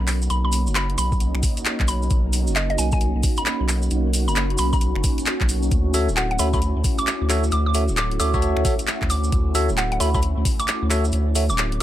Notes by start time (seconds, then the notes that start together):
Already playing: A#3 C#4 D#4 F#4
0.00 B1
0.08 finger snap, clap, open hi-hat, cabasa
0.22 cabasa
0.30 B1 B5, closed hi-hat, cabasa
0.45 B5
0.52 open hi-hat, cabasa
0.67 F#1, cabasa
0.75 B5, clap, closed hi-hat, cabasa
0.90 closed hi-hat
0.98 B1 B5, finger snap, open hi-hat, cabasa
1.12 kick, cabasa
1.20 closed hi-hat, cabasa
1.35 B1, finger snap
1.43 kick, open hi-hat, cabasa
1.57 closed hi-hat, cabasa
1.65 clap, closed hi-hat, cabasa
1.80 B1, kick, clap
1.88 B5, open hi-hat, cabasa
2.03 cabasa
2.10 B1, kick, closed hi-hat, cabasa
2.33 open hi-hat, cabasa
2.47 F#1, cabasa
2.56 D#5, clap, closed hi-hat, cabasa
2.70 D#5, closed hi-hat
2.78 B1 G#5, open hi-hat, cabasa
2.92 G#5, kick, cabasa
3.01 closed hi-hat, cabasa
3.15 B1
3.23 kick, open hi-hat, cabasa
3.37 B5, closed hi-hat, cabasa
3.46 clap, closed hi-hat, cabasa
3.60 B1
3.68 finger snap, clap, open hi-hat, cabasa
3.82 cabasa
3.91 B1, closed hi-hat, cabasa
4.13 open hi-hat, cabasa
4.28 F#1 B5, cabasa
4.35 clap, closed hi-hat, cabasa
4.50 closed hi-hat
4.58 B1 B5, finger snap, open hi-hat, cabasa
4.73 B5, kick, cabasa
4.81 closed hi-hat, cabasa
4.96 F#1, finger snap
5.04 kick, open hi-hat, cabasa
5.18 closed hi-hat, cabasa
5.26 clap, closed hi-hat, cabasa
5.41 B1, kick, clap
5.49 open hi-hat, cabasa
5.63 cabasa
5.71 D2 A3 E4, kick, closed hi-hat, cabasa
5.94 F#4 A4 C#5 E5, open hi-hat, cabasa
6.08 D1, cabasa
6.17 F#5, clap, closed hi-hat, cabasa
6.31 F#5, closed hi-hat
6.39 D2 F#4 A4 C#5 E5 B5, open hi-hat, cabasa
6.53 F#4 A4 C#5 E5 B5, kick, cabasa
6.62 closed hi-hat, cabasa
6.76 D2
6.84 kick, open hi-hat, cabasa
6.98 D6, closed hi-hat, cabasa
7.07 clap, closed hi-hat, cabasa
7.21 D2
7.30 F#4 A4 C#5 E5, finger snap, clap, open hi-hat, cabasa
7.44 cabasa
7.52 D2 D6, closed hi-hat, cabasa
7.66 D6
7.74 F#4 A4 C#5 E5, open hi-hat, cabasa
7.88 D1, cabasa
7.97 D6, clap, closed hi-hat, cabasa
8.11 closed hi-hat
8.20 D2 F#4 A4 C#5 E5 D6, finger snap, open hi-hat, cabasa
8.34 F#4 A4 C#5 E5, kick, cabasa
8.42 closed hi-hat, cabasa
8.57 D2, finger snap
8.65 F#4 A4 C#5 E5, kick, open hi-hat, cabasa
8.79 closed hi-hat, cabasa
8.87 clap, closed hi-hat, cabasa
9.02 D2, kick, clap
9.10 D6, open hi-hat, cabasa
9.24 cabasa
9.32 D2, kick, closed hi-hat, cabasa
9.55 F#4 A4 C#5 E5, open hi-hat, cabasa
9.69 D1, cabasa
9.77 F#5, clap, closed hi-hat, cabasa
9.92 F#5, closed hi-hat
10.00 D2 F#4 A4 C#5 E5 B5, open hi-hat, cabasa
10.14 F#4 A4 C#5 E5 B5, kick, cabasa
10.22 closed hi-hat, cabasa
10.37 D2
10.45 kick, open hi-hat, cabasa
10.59 D6, closed hi-hat, cabasa
10.68 clap, closed hi-hat, cabasa
10.82 D2
10.90 F#4 A4 C#5 E5, finger snap, clap, open hi-hat, cabasa
11.05 cabasa
11.12 D2, closed hi-hat, cabasa
11.35 F#4 A4 C#5 E5, open hi-hat, cabasa
11.49 D1 D6, cabasa
11.58 clap, closed hi-hat, cabasa
11.72 closed hi-hat